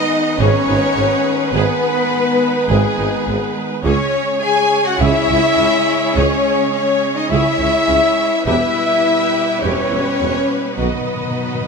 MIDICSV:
0, 0, Header, 1, 13, 480
1, 0, Start_track
1, 0, Tempo, 576923
1, 1283, Time_signature, 4, 2, 24, 8
1, 9712, End_track
2, 0, Start_track
2, 0, Title_t, "Flute"
2, 0, Program_c, 0, 73
2, 0, Note_on_c, 0, 75, 95
2, 322, Note_off_c, 0, 75, 0
2, 330, Note_on_c, 0, 73, 82
2, 1039, Note_off_c, 0, 73, 0
2, 1277, Note_on_c, 0, 71, 94
2, 2207, Note_off_c, 0, 71, 0
2, 2235, Note_on_c, 0, 68, 67
2, 2945, Note_off_c, 0, 68, 0
2, 3207, Note_on_c, 0, 73, 89
2, 3684, Note_on_c, 0, 80, 97
2, 3697, Note_off_c, 0, 73, 0
2, 4043, Note_on_c, 0, 78, 85
2, 4056, Note_off_c, 0, 80, 0
2, 4163, Note_on_c, 0, 76, 90
2, 4176, Note_off_c, 0, 78, 0
2, 5130, Note_on_c, 0, 73, 86
2, 5143, Note_off_c, 0, 76, 0
2, 5596, Note_off_c, 0, 73, 0
2, 5601, Note_on_c, 0, 73, 77
2, 5970, Note_on_c, 0, 75, 78
2, 5983, Note_off_c, 0, 73, 0
2, 6074, Note_off_c, 0, 75, 0
2, 6079, Note_on_c, 0, 76, 99
2, 7022, Note_off_c, 0, 76, 0
2, 7038, Note_on_c, 0, 76, 89
2, 8008, Note_on_c, 0, 73, 79
2, 8020, Note_off_c, 0, 76, 0
2, 8733, Note_off_c, 0, 73, 0
2, 8973, Note_on_c, 0, 71, 49
2, 9712, Note_off_c, 0, 71, 0
2, 9712, End_track
3, 0, Start_track
3, 0, Title_t, "Trumpet section"
3, 0, Program_c, 1, 61
3, 0, Note_on_c, 1, 75, 93
3, 329, Note_off_c, 1, 75, 0
3, 338, Note_on_c, 1, 73, 92
3, 1147, Note_off_c, 1, 73, 0
3, 1288, Note_on_c, 1, 71, 83
3, 2227, Note_off_c, 1, 71, 0
3, 2250, Note_on_c, 1, 68, 83
3, 2966, Note_off_c, 1, 68, 0
3, 3216, Note_on_c, 1, 73, 86
3, 3656, Note_off_c, 1, 73, 0
3, 3699, Note_on_c, 1, 80, 88
3, 4051, Note_off_c, 1, 80, 0
3, 4051, Note_on_c, 1, 78, 83
3, 4165, Note_off_c, 1, 78, 0
3, 4171, Note_on_c, 1, 76, 103
3, 5127, Note_off_c, 1, 76, 0
3, 5132, Note_on_c, 1, 73, 86
3, 5598, Note_off_c, 1, 73, 0
3, 5607, Note_on_c, 1, 73, 74
3, 5958, Note_off_c, 1, 73, 0
3, 5960, Note_on_c, 1, 75, 80
3, 6081, Note_off_c, 1, 75, 0
3, 6082, Note_on_c, 1, 76, 105
3, 7032, Note_off_c, 1, 76, 0
3, 7042, Note_on_c, 1, 76, 95
3, 7983, Note_off_c, 1, 76, 0
3, 8008, Note_on_c, 1, 73, 80
3, 8824, Note_off_c, 1, 73, 0
3, 8966, Note_on_c, 1, 71, 49
3, 9712, Note_off_c, 1, 71, 0
3, 9712, End_track
4, 0, Start_track
4, 0, Title_t, "Violin section"
4, 0, Program_c, 2, 48
4, 0, Note_on_c, 2, 75, 89
4, 321, Note_on_c, 2, 73, 100
4, 325, Note_off_c, 2, 75, 0
4, 1282, Note_off_c, 2, 73, 0
4, 1290, Note_on_c, 2, 71, 75
4, 2238, Note_on_c, 2, 68, 78
4, 2246, Note_off_c, 2, 71, 0
4, 2946, Note_off_c, 2, 68, 0
4, 3204, Note_on_c, 2, 73, 87
4, 3650, Note_off_c, 2, 73, 0
4, 3676, Note_on_c, 2, 80, 83
4, 4032, Note_off_c, 2, 80, 0
4, 4048, Note_on_c, 2, 78, 80
4, 4165, Note_on_c, 2, 76, 102
4, 4166, Note_off_c, 2, 78, 0
4, 5124, Note_off_c, 2, 76, 0
4, 5141, Note_on_c, 2, 73, 82
4, 5598, Note_off_c, 2, 73, 0
4, 5608, Note_on_c, 2, 73, 75
4, 5958, Note_off_c, 2, 73, 0
4, 5969, Note_on_c, 2, 75, 70
4, 6086, Note_off_c, 2, 75, 0
4, 6097, Note_on_c, 2, 76, 103
4, 7031, Note_off_c, 2, 76, 0
4, 7050, Note_on_c, 2, 76, 92
4, 7987, Note_off_c, 2, 76, 0
4, 8003, Note_on_c, 2, 73, 87
4, 8963, Note_off_c, 2, 73, 0
4, 8968, Note_on_c, 2, 71, 51
4, 9712, Note_off_c, 2, 71, 0
4, 9712, End_track
5, 0, Start_track
5, 0, Title_t, "Violin section"
5, 0, Program_c, 3, 48
5, 0, Note_on_c, 3, 75, 99
5, 321, Note_off_c, 3, 75, 0
5, 321, Note_on_c, 3, 73, 84
5, 1275, Note_on_c, 3, 71, 100
5, 1282, Note_off_c, 3, 73, 0
5, 2220, Note_off_c, 3, 71, 0
5, 2248, Note_on_c, 3, 68, 81
5, 2966, Note_off_c, 3, 68, 0
5, 3208, Note_on_c, 3, 73, 89
5, 3652, Note_off_c, 3, 73, 0
5, 3683, Note_on_c, 3, 80, 104
5, 4041, Note_on_c, 3, 78, 84
5, 4043, Note_off_c, 3, 80, 0
5, 4160, Note_on_c, 3, 76, 102
5, 4162, Note_off_c, 3, 78, 0
5, 5115, Note_on_c, 3, 73, 87
5, 5121, Note_off_c, 3, 76, 0
5, 5586, Note_off_c, 3, 73, 0
5, 5596, Note_on_c, 3, 73, 94
5, 5952, Note_off_c, 3, 73, 0
5, 5969, Note_on_c, 3, 75, 78
5, 6081, Note_on_c, 3, 76, 83
5, 6084, Note_off_c, 3, 75, 0
5, 7022, Note_off_c, 3, 76, 0
5, 7036, Note_on_c, 3, 76, 91
5, 7980, Note_off_c, 3, 76, 0
5, 8005, Note_on_c, 3, 73, 81
5, 8945, Note_off_c, 3, 73, 0
5, 8981, Note_on_c, 3, 71, 59
5, 9712, Note_off_c, 3, 71, 0
5, 9712, End_track
6, 0, Start_track
6, 0, Title_t, "Viola section"
6, 0, Program_c, 4, 48
6, 0, Note_on_c, 4, 71, 73
6, 333, Note_on_c, 4, 68, 73
6, 552, Note_off_c, 4, 68, 0
6, 566, Note_on_c, 4, 63, 64
6, 633, Note_off_c, 4, 63, 0
6, 797, Note_on_c, 4, 59, 54
6, 863, Note_off_c, 4, 59, 0
6, 1276, Note_on_c, 4, 68, 76
6, 1502, Note_off_c, 4, 68, 0
6, 2240, Note_on_c, 4, 68, 72
6, 2465, Note_off_c, 4, 68, 0
6, 2477, Note_on_c, 4, 63, 62
6, 2543, Note_off_c, 4, 63, 0
6, 2721, Note_on_c, 4, 59, 61
6, 2787, Note_off_c, 4, 59, 0
6, 3174, Note_off_c, 4, 71, 0
6, 3201, Note_on_c, 4, 68, 75
6, 3203, Note_on_c, 4, 73, 72
6, 3425, Note_off_c, 4, 68, 0
6, 4169, Note_on_c, 4, 68, 72
6, 4389, Note_off_c, 4, 68, 0
6, 4404, Note_on_c, 4, 64, 69
6, 4470, Note_off_c, 4, 64, 0
6, 4649, Note_on_c, 4, 61, 74
6, 4716, Note_off_c, 4, 61, 0
6, 5127, Note_on_c, 4, 68, 79
6, 5348, Note_off_c, 4, 68, 0
6, 6089, Note_on_c, 4, 68, 75
6, 6310, Note_off_c, 4, 68, 0
6, 6332, Note_on_c, 4, 64, 57
6, 6398, Note_off_c, 4, 64, 0
6, 6561, Note_on_c, 4, 61, 59
6, 6627, Note_off_c, 4, 61, 0
6, 7010, Note_off_c, 4, 73, 0
6, 7028, Note_on_c, 4, 71, 65
6, 7032, Note_on_c, 4, 67, 62
6, 7260, Note_off_c, 4, 67, 0
6, 8005, Note_on_c, 4, 67, 59
6, 8227, Note_off_c, 4, 67, 0
6, 8243, Note_on_c, 4, 64, 48
6, 8309, Note_off_c, 4, 64, 0
6, 8488, Note_on_c, 4, 59, 47
6, 8555, Note_off_c, 4, 59, 0
6, 8922, Note_off_c, 4, 71, 0
6, 8969, Note_on_c, 4, 75, 51
6, 8970, Note_on_c, 4, 66, 55
6, 9190, Note_off_c, 4, 66, 0
6, 9712, Note_off_c, 4, 75, 0
6, 9712, End_track
7, 0, Start_track
7, 0, Title_t, "String section"
7, 0, Program_c, 5, 48
7, 0, Note_on_c, 5, 56, 86
7, 0, Note_on_c, 5, 63, 73
7, 0, Note_on_c, 5, 68, 75
7, 0, Note_on_c, 5, 71, 75
7, 3175, Note_off_c, 5, 63, 0
7, 3177, Note_off_c, 5, 71, 0
7, 3198, Note_off_c, 5, 68, 0
7, 3202, Note_off_c, 5, 56, 0
7, 3208, Note_on_c, 5, 68, 83
7, 3210, Note_on_c, 5, 61, 85
7, 3211, Note_on_c, 5, 73, 82
7, 3212, Note_on_c, 5, 56, 76
7, 7012, Note_off_c, 5, 68, 0
7, 7014, Note_off_c, 5, 56, 0
7, 7047, Note_off_c, 5, 61, 0
7, 7047, Note_off_c, 5, 73, 0
7, 7053, Note_on_c, 5, 64, 71
7, 7057, Note_on_c, 5, 67, 73
7, 7058, Note_on_c, 5, 59, 72
7, 7063, Note_on_c, 5, 71, 83
7, 8958, Note_on_c, 5, 63, 56
7, 8968, Note_off_c, 5, 64, 0
7, 8970, Note_off_c, 5, 67, 0
7, 8971, Note_on_c, 5, 66, 54
7, 9712, Note_off_c, 5, 59, 0
7, 9712, Note_off_c, 5, 63, 0
7, 9712, Note_off_c, 5, 66, 0
7, 9712, Note_off_c, 5, 71, 0
7, 9712, End_track
8, 0, Start_track
8, 0, Title_t, "Cello section"
8, 0, Program_c, 6, 48
8, 0, Note_on_c, 6, 63, 91
8, 301, Note_off_c, 6, 63, 0
8, 325, Note_on_c, 6, 61, 86
8, 1265, Note_off_c, 6, 61, 0
8, 1277, Note_on_c, 6, 59, 90
8, 2221, Note_off_c, 6, 59, 0
8, 2244, Note_on_c, 6, 56, 69
8, 2949, Note_off_c, 6, 56, 0
8, 3200, Note_on_c, 6, 61, 88
8, 3648, Note_off_c, 6, 61, 0
8, 3674, Note_on_c, 6, 68, 81
8, 4031, Note_off_c, 6, 68, 0
8, 4044, Note_on_c, 6, 66, 86
8, 4161, Note_on_c, 6, 64, 93
8, 4164, Note_off_c, 6, 66, 0
8, 5122, Note_off_c, 6, 64, 0
8, 5123, Note_on_c, 6, 61, 89
8, 5586, Note_off_c, 6, 61, 0
8, 5596, Note_on_c, 6, 61, 76
8, 5952, Note_off_c, 6, 61, 0
8, 5963, Note_on_c, 6, 63, 73
8, 6079, Note_on_c, 6, 64, 79
8, 6083, Note_off_c, 6, 63, 0
8, 7032, Note_off_c, 6, 64, 0
8, 7042, Note_on_c, 6, 64, 83
8, 7983, Note_off_c, 6, 64, 0
8, 8011, Note_on_c, 6, 61, 76
8, 8967, Note_off_c, 6, 61, 0
8, 8971, Note_on_c, 6, 59, 57
8, 9712, Note_off_c, 6, 59, 0
8, 9712, End_track
9, 0, Start_track
9, 0, Title_t, "French horn section"
9, 0, Program_c, 7, 60
9, 0, Note_on_c, 7, 63, 99
9, 321, Note_on_c, 7, 61, 105
9, 326, Note_off_c, 7, 63, 0
9, 1269, Note_on_c, 7, 59, 101
9, 1282, Note_off_c, 7, 61, 0
9, 2112, Note_off_c, 7, 59, 0
9, 2254, Note_on_c, 7, 56, 90
9, 2954, Note_off_c, 7, 56, 0
9, 3210, Note_on_c, 7, 61, 94
9, 3653, Note_off_c, 7, 61, 0
9, 3679, Note_on_c, 7, 68, 102
9, 4034, Note_off_c, 7, 68, 0
9, 4049, Note_on_c, 7, 66, 91
9, 4149, Note_on_c, 7, 64, 106
9, 4166, Note_off_c, 7, 66, 0
9, 5116, Note_off_c, 7, 64, 0
9, 5130, Note_on_c, 7, 61, 103
9, 5597, Note_off_c, 7, 61, 0
9, 5609, Note_on_c, 7, 61, 93
9, 5959, Note_off_c, 7, 61, 0
9, 5967, Note_on_c, 7, 63, 83
9, 6077, Note_on_c, 7, 64, 95
9, 6085, Note_off_c, 7, 63, 0
9, 7037, Note_off_c, 7, 64, 0
9, 7047, Note_on_c, 7, 64, 109
9, 7986, Note_off_c, 7, 64, 0
9, 8003, Note_on_c, 7, 61, 88
9, 8963, Note_off_c, 7, 61, 0
9, 8967, Note_on_c, 7, 59, 66
9, 9712, Note_off_c, 7, 59, 0
9, 9712, End_track
10, 0, Start_track
10, 0, Title_t, "Trombone section"
10, 0, Program_c, 8, 61
10, 0, Note_on_c, 8, 51, 76
10, 0, Note_on_c, 8, 59, 72
10, 3182, Note_off_c, 8, 59, 0
10, 3209, Note_on_c, 8, 49, 74
10, 3213, Note_off_c, 8, 51, 0
10, 3214, Note_on_c, 8, 56, 77
10, 6907, Note_off_c, 8, 49, 0
10, 6907, Note_off_c, 8, 56, 0
10, 7048, Note_on_c, 8, 55, 69
10, 7049, Note_on_c, 8, 47, 68
10, 8932, Note_off_c, 8, 55, 0
10, 8959, Note_on_c, 8, 54, 48
10, 8966, Note_off_c, 8, 47, 0
10, 8968, Note_on_c, 8, 51, 52
10, 9712, Note_off_c, 8, 51, 0
10, 9712, Note_off_c, 8, 54, 0
10, 9712, End_track
11, 0, Start_track
11, 0, Title_t, "Timpani"
11, 0, Program_c, 10, 47
11, 8966, Note_on_c, 10, 47, 26
11, 9023, Note_off_c, 10, 47, 0
11, 9031, Note_on_c, 10, 47, 26
11, 9081, Note_off_c, 10, 47, 0
11, 9091, Note_on_c, 10, 47, 34
11, 9148, Note_off_c, 10, 47, 0
11, 9159, Note_on_c, 10, 47, 34
11, 9213, Note_off_c, 10, 47, 0
11, 9223, Note_on_c, 10, 47, 28
11, 9276, Note_off_c, 10, 47, 0
11, 9289, Note_on_c, 10, 47, 32
11, 9337, Note_off_c, 10, 47, 0
11, 9347, Note_on_c, 10, 47, 33
11, 9401, Note_off_c, 10, 47, 0
11, 9410, Note_on_c, 10, 47, 35
11, 9459, Note_off_c, 10, 47, 0
11, 9469, Note_on_c, 10, 47, 33
11, 9524, Note_off_c, 10, 47, 0
11, 9534, Note_on_c, 10, 47, 38
11, 9588, Note_off_c, 10, 47, 0
11, 9605, Note_on_c, 10, 47, 37
11, 9652, Note_off_c, 10, 47, 0
11, 9662, Note_on_c, 10, 47, 42
11, 9712, Note_off_c, 10, 47, 0
11, 9712, End_track
12, 0, Start_track
12, 0, Title_t, "Double bass section"
12, 0, Program_c, 11, 48
12, 328, Note_on_c, 11, 32, 82
12, 395, Note_off_c, 11, 32, 0
12, 563, Note_on_c, 11, 32, 60
12, 630, Note_off_c, 11, 32, 0
12, 802, Note_on_c, 11, 32, 56
12, 869, Note_off_c, 11, 32, 0
12, 1279, Note_on_c, 11, 32, 86
12, 1346, Note_off_c, 11, 32, 0
12, 2246, Note_on_c, 11, 32, 93
12, 2312, Note_off_c, 11, 32, 0
12, 2481, Note_on_c, 11, 32, 57
12, 2548, Note_off_c, 11, 32, 0
12, 2724, Note_on_c, 11, 32, 51
12, 2791, Note_off_c, 11, 32, 0
12, 3200, Note_on_c, 11, 37, 103
12, 3267, Note_off_c, 11, 37, 0
12, 4158, Note_on_c, 11, 37, 93
12, 4224, Note_off_c, 11, 37, 0
12, 4402, Note_on_c, 11, 37, 61
12, 4468, Note_off_c, 11, 37, 0
12, 4642, Note_on_c, 11, 37, 59
12, 4709, Note_off_c, 11, 37, 0
12, 5124, Note_on_c, 11, 37, 96
12, 5190, Note_off_c, 11, 37, 0
12, 6078, Note_on_c, 11, 37, 80
12, 6144, Note_off_c, 11, 37, 0
12, 6322, Note_on_c, 11, 37, 61
12, 6389, Note_off_c, 11, 37, 0
12, 6570, Note_on_c, 11, 37, 55
12, 6636, Note_off_c, 11, 37, 0
12, 7044, Note_on_c, 11, 40, 95
12, 7111, Note_off_c, 11, 40, 0
12, 8007, Note_on_c, 11, 40, 70
12, 8073, Note_off_c, 11, 40, 0
12, 8251, Note_on_c, 11, 40, 42
12, 8317, Note_off_c, 11, 40, 0
12, 8490, Note_on_c, 11, 40, 46
12, 8556, Note_off_c, 11, 40, 0
12, 8973, Note_on_c, 11, 35, 68
12, 9039, Note_off_c, 11, 35, 0
12, 9712, End_track
13, 0, Start_track
13, 0, Title_t, "Tuba"
13, 0, Program_c, 12, 58
13, 322, Note_on_c, 12, 32, 80
13, 418, Note_off_c, 12, 32, 0
13, 561, Note_on_c, 12, 32, 60
13, 657, Note_off_c, 12, 32, 0
13, 802, Note_on_c, 12, 32, 59
13, 898, Note_off_c, 12, 32, 0
13, 1283, Note_on_c, 12, 32, 84
13, 1379, Note_off_c, 12, 32, 0
13, 2244, Note_on_c, 12, 32, 94
13, 2340, Note_off_c, 12, 32, 0
13, 2487, Note_on_c, 12, 32, 67
13, 2582, Note_off_c, 12, 32, 0
13, 2724, Note_on_c, 12, 32, 63
13, 2820, Note_off_c, 12, 32, 0
13, 3198, Note_on_c, 12, 37, 89
13, 3295, Note_off_c, 12, 37, 0
13, 4165, Note_on_c, 12, 37, 84
13, 4261, Note_off_c, 12, 37, 0
13, 4406, Note_on_c, 12, 37, 72
13, 4502, Note_off_c, 12, 37, 0
13, 4643, Note_on_c, 12, 37, 64
13, 4739, Note_off_c, 12, 37, 0
13, 5122, Note_on_c, 12, 37, 81
13, 5218, Note_off_c, 12, 37, 0
13, 6078, Note_on_c, 12, 37, 85
13, 6175, Note_off_c, 12, 37, 0
13, 6318, Note_on_c, 12, 37, 61
13, 6415, Note_off_c, 12, 37, 0
13, 6561, Note_on_c, 12, 37, 61
13, 6657, Note_off_c, 12, 37, 0
13, 7038, Note_on_c, 12, 28, 72
13, 7135, Note_off_c, 12, 28, 0
13, 8008, Note_on_c, 12, 28, 72
13, 8103, Note_off_c, 12, 28, 0
13, 8250, Note_on_c, 12, 28, 56
13, 8344, Note_off_c, 12, 28, 0
13, 8490, Note_on_c, 12, 28, 52
13, 8584, Note_off_c, 12, 28, 0
13, 8971, Note_on_c, 12, 35, 55
13, 9066, Note_off_c, 12, 35, 0
13, 9712, End_track
0, 0, End_of_file